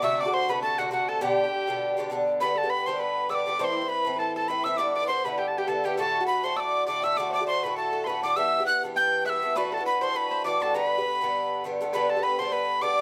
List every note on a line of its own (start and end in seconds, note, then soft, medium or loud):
0.02 0.26 C3 medium
0.02 0.26 D3 medium
0.02 0.26 A3 medium
0.02 0.24 F#4 medium
0.02 0.18 E5 medium
0.02 0.22 E6 loud
0.19 0.32 D5 medium
0.19 0.35 D6 loud
0.25 0.48 D3 soft
0.25 0.49 A3 soft
0.25 0.49 F#4 medium
0.33 0.48 C5 medium
0.33 0.50 C5 medium
0.33 0.51 C6 loud
0.48 0.77 C3 medium
0.48 0.79 D3 medium
0.48 0.79 A3 medium
0.48 0.80 F#4 medium
0.48 0.62 B4 medium
0.48 0.62 B5 medium
0.62 0.79 A4 medium
0.62 0.81 A4 medium
0.62 0.80 A5 medium
0.78 0.90 C3 medium
0.78 0.91 D3 medium
0.78 0.91 A3 medium
0.78 0.91 F#4 medium
0.78 0.92 F#4 medium
0.78 0.92 F#5 medium
0.91 1.21 C3 medium
0.91 1.21 D3 medium
0.91 1.22 A3 medium
0.91 1.10 F#4 medium
0.91 1.09 F#4 medium
0.91 1.22 F#4 medium
0.91 1.10 F#5 medium
1.08 1.23 A4 medium
1.08 1.21 A4 medium
1.08 1.23 A5 medium
1.21 1.45 B2 medium
1.21 1.45 D3 medium
1.21 1.44 D4 medium
1.21 2.06 G4 medium
1.21 2.11 G4 medium
1.21 1.43 G4 medium
1.21 2.11 G5 medium
1.44 1.67 D3 soft
1.44 1.67 D4 soft
1.44 1.68 G4 soft
1.67 1.96 B2 medium
1.67 1.97 D3 medium
1.67 1.98 D4 medium
1.67 1.99 G4 medium
1.97 2.09 B2 medium
1.97 2.10 D3 medium
1.97 2.11 D4 medium
1.97 2.11 G4 medium
2.10 2.40 B2 medium
2.10 2.40 D3 medium
2.10 2.41 D4 medium
2.10 2.41 G4 medium
2.40 2.64 G2 medium
2.40 2.64 D3 medium
2.40 2.64 B3 medium
2.40 2.62 G4 medium
2.40 2.56 B4 medium
2.40 2.55 B4 medium
2.40 2.59 B5 medium
2.55 2.68 A4 medium
2.55 2.72 A4 medium
2.55 2.71 A5 medium
2.63 2.86 D3 soft
2.63 2.87 B3 soft
2.63 2.87 G4 soft
2.70 2.85 B4 medium
2.70 2.88 B4 medium
2.70 2.88 B5 medium
2.86 3.28 G2 medium
2.86 3.29 D3 medium
2.86 3.30 B3 medium
2.86 3.31 G4 medium
2.86 3.01 C5 medium
2.86 2.99 C5 medium
2.86 3.01 C6 medium
2.99 3.31 B4 medium
2.99 3.28 B4 medium
2.99 3.31 B5 medium
3.29 3.44 G2 medium
3.29 3.45 D3 medium
3.29 3.46 B3 medium
3.29 3.47 G4 medium
3.29 3.45 D5 medium
3.29 3.58 D5 medium
3.29 3.36 E6 medium
3.35 3.60 D6 medium
3.46 3.59 G2 soft
3.46 3.60 D3 medium
3.46 3.60 B3 medium
3.46 3.61 G4 medium
3.46 3.61 D5 medium
3.59 3.83 A2 medium
3.59 3.83 E3 medium
3.59 3.82 C4 medium
3.59 3.80 E4 medium
3.59 3.71 C5 medium
3.59 3.89 C5 medium
3.59 3.65 D6 medium
3.64 3.90 C6 loud
3.72 3.76 D5 medium
3.77 3.89 C5 medium
3.81 4.05 E3 soft
3.81 4.06 C4 soft
3.81 4.05 E4 soft
3.88 4.14 B4 medium
3.88 4.21 B4 medium
3.88 4.20 B5 loud
4.05 4.47 A2 medium
4.05 4.48 E3 medium
4.05 4.49 C4 medium
4.05 4.49 E4 medium
4.16 4.36 A4 medium
4.16 4.35 A4 medium
4.16 4.19 B4 soft
4.16 4.35 A5 medium
4.36 4.48 A4 medium
4.36 4.50 A5 medium
4.48 4.64 A2 medium
4.48 4.65 E3 medium
4.48 4.66 C4 medium
4.48 4.66 E4 medium
4.48 4.67 B4 medium
4.48 4.65 B4 medium
4.48 4.66 B5 medium
4.64 4.78 A2 soft
4.64 4.79 E3 medium
4.64 4.79 C4 medium
4.64 4.80 E5 medium
4.64 4.79 E5 medium
4.64 4.79 E6 medium
4.68 4.79 E4 medium
4.77 5.02 G2 medium
4.77 5.02 D3 medium
4.77 5.02 B3 medium
4.77 5.01 E4 medium
4.77 4.94 D5 medium
4.77 4.94 D6 loud
4.94 5.10 D5 medium
4.94 5.08 D5 medium
4.94 5.07 D6 medium
5.02 5.25 D3 soft
5.02 5.25 B3 soft
5.02 5.25 E4 soft
5.07 5.26 C5 medium
5.07 5.24 C5 medium
5.07 5.26 C6 loud
5.25 5.66 G2 medium
5.25 5.68 D3 medium
5.25 5.68 B3 medium
5.25 5.68 E4 medium
5.25 5.40 B4 medium
5.25 5.39 B4 medium
5.25 5.40 B5 medium
5.37 5.47 G4 medium
5.37 5.48 G4 medium
5.37 5.49 G5 medium
5.48 5.59 A5 medium
5.57 5.69 G4 medium
5.57 5.67 G4 medium
5.57 5.70 G5 medium
5.67 5.83 G2 soft
5.67 5.84 D3 medium
5.67 5.84 B3 medium
5.67 5.85 E4 medium
5.67 5.85 A4 medium
5.67 5.86 A4 medium
5.67 5.86 A5 medium
5.84 5.97 G2 medium
5.84 5.97 D3 medium
5.84 5.98 B3 medium
5.84 5.99 E4 medium
5.84 5.97 G4 medium
5.84 6.00 G4 medium
5.84 5.98 G5 medium
5.97 6.21 A2 medium
5.97 6.21 D3 medium
5.97 6.21 A3 medium
5.97 6.19 F#4 medium
5.97 6.26 A4 medium
5.97 6.29 A4 medium
5.97 6.26 A5 loud
6.20 6.43 D3 soft
6.20 6.44 A3 soft
6.20 6.44 F#4 soft
6.27 6.43 B4 medium
6.27 6.46 B4 medium
6.27 6.45 B5 loud
6.43 6.86 A2 medium
6.43 6.87 D3 medium
6.43 6.88 A3 medium
6.43 6.88 F#4 medium
6.43 6.56 C5 medium
6.43 6.58 C5 medium
6.43 6.58 C6 medium
6.56 6.85 D5 medium
6.56 6.86 D5 medium
6.56 6.87 D6 medium
6.56 6.61 E6 medium
6.86 7.02 A2 medium
6.86 7.03 D3 medium
6.86 7.04 A3 medium
6.86 7.04 F#4 medium
6.86 7.05 D5 medium
6.86 7.02 D5 medium
6.86 7.05 D6 loud
7.02 7.17 A2 medium
7.02 7.17 D3 medium
7.02 7.18 A3 medium
7.02 7.18 F#4 medium
7.02 7.15 E5 medium
7.02 7.19 E5 medium
7.02 7.19 E6 medium
7.16 7.41 A2 medium
7.16 7.41 D3 medium
7.16 7.40 A3 medium
7.16 7.39 F#4 medium
7.16 7.32 D5 medium
7.16 7.29 D5 medium
7.16 7.33 D6 loud
7.29 7.34 C5 medium
7.29 7.48 D5 medium
7.29 7.46 D5 medium
7.34 7.46 D6 medium
7.40 7.64 D3 soft
7.40 7.64 A3 soft
7.40 7.64 F#4 soft
7.47 7.64 C5 medium
7.47 7.63 C5 medium
7.47 7.65 C6 loud
7.63 8.06 A2 medium
7.63 8.07 D3 medium
7.63 8.08 A3 medium
7.63 8.08 F#4 medium
7.63 7.76 B4 medium
7.63 7.77 B5 medium
7.76 7.91 A4 medium
7.76 8.08 A4 medium
7.76 8.06 A5 medium
7.93 8.06 A4 medium
8.04 8.22 A2 medium
8.04 8.23 D3 soft
8.04 8.22 B4 medium
8.04 8.23 B5 medium
8.04 8.09 C6 medium
8.09 8.24 A3 medium
8.09 8.25 F#4 medium
8.23 8.36 A2 medium
8.23 8.37 D3 medium
8.23 8.37 A3 medium
8.23 8.38 F#4 soft
8.23 8.35 D5 medium
8.23 8.36 D5 medium
8.23 8.38 D6 medium
8.36 8.60 G2 medium
8.36 8.60 E3 medium
8.36 8.60 B3 medium
8.36 8.59 G4 medium
8.36 8.64 E5 medium
8.36 8.64 E5 loud
8.36 8.66 E6 loud
8.60 8.83 E3 soft
8.60 8.84 B3 soft
8.60 8.83 G4 medium
8.66 8.82 F#5 medium
8.66 8.82 F#6 loud
8.83 9.25 G2 medium
8.83 9.26 E3 medium
8.83 9.26 B3 medium
8.83 9.27 G4 medium
8.95 9.27 G5 medium
8.95 9.24 G5 medium
8.95 9.24 G6 loud
9.25 9.41 G2 medium
9.25 9.42 E3 soft
9.25 9.43 B3 medium
9.25 9.44 G4 medium
9.25 9.57 E5 medium
9.25 9.53 E5 medium
9.25 9.30 F#6 medium
9.29 9.59 E6 medium
9.42 9.55 G2 medium
9.42 9.55 E3 medium
9.42 9.57 B3 medium
9.42 9.57 G4 medium
9.56 9.79 A2 medium
9.56 9.79 E3 medium
9.56 9.78 D4 medium
9.56 9.76 F#4 medium
9.56 9.74 B4 medium
9.56 9.71 B4 medium
9.56 9.75 B5 loud
9.72 9.84 A4 medium
9.72 9.85 A4 medium
9.72 9.86 A5 medium
9.78 10.01 E3 soft
9.78 10.02 D4 soft
9.78 10.01 F#4 soft
9.86 10.01 B4 medium
9.86 10.05 B5 loud
10.01 10.43 A2 medium
10.01 10.44 E3 medium
10.01 10.45 D4 medium
10.01 10.45 F#4 medium
10.01 10.14 C5 medium
10.01 10.17 C5 medium
10.01 10.18 C6 medium
10.14 10.31 B4 medium
10.14 10.47 B4 medium
10.14 10.45 B5 medium
10.31 10.44 C5 medium
10.44 10.59 A2 medium
10.44 10.60 E3 medium
10.44 10.61 D4 medium
10.44 10.61 F#4 medium
10.44 10.72 D5 medium
10.44 10.62 D5 medium
10.44 10.64 D6 medium
10.60 10.74 A2 medium
10.60 10.75 E3 medium
10.60 10.75 D4 medium
10.60 10.75 F#4 medium
10.60 10.77 A4 medium
10.60 10.77 A5 medium
10.74 10.98 G2 medium
10.74 10.98 D3 medium
10.74 10.98 B3 medium
10.74 10.97 G4 medium
10.74 11.60 B4 medium
10.74 11.64 B4 medium
10.74 11.64 B5 loud
10.98 11.21 D3 soft
10.98 11.22 B3 soft
10.98 11.21 G4 soft
11.21 11.63 G2 medium
11.21 11.64 D3 medium
11.21 11.65 B3 medium
11.21 11.65 G4 medium
11.64 11.79 G2 medium
11.64 11.81 D3 medium
11.64 11.81 B3 medium
11.64 11.82 G4 medium
11.81 11.92 G2 medium
11.81 11.93 D3 medium
11.81 11.94 B3 medium
11.81 11.94 G4 medium
11.93 12.17 G2 medium
11.93 12.17 D3 medium
11.93 12.16 B3 medium
11.93 12.15 G4 medium
11.93 12.09 B4 medium
11.93 12.11 B4 medium
11.93 12.11 B5 medium
12.09 12.22 A4 medium
12.09 12.23 A4 medium
12.09 12.25 A5 medium
12.16 12.39 D3 soft
12.16 12.39 B3 soft
12.16 12.40 G4 medium
12.23 12.38 B4 medium
12.23 12.39 B4 medium
12.23 12.41 B5 loud
12.39 12.80 G2 medium
12.39 12.81 D3 medium
12.39 12.82 B3 medium
12.39 12.83 G4 medium
12.39 12.51 C5 medium
12.39 12.55 C5 medium
12.39 12.54 C6 medium
12.52 12.80 B4 medium
12.52 12.83 B4 medium
12.52 12.83 B5 medium
12.81 12.97 G2 medium
12.81 12.98 D3 medium
12.81 12.99 B3 medium
12.81 13.00 G4 medium
12.81 13.01 D5 medium
12.81 13.01 D6 medium
12.98 13.01 G2 medium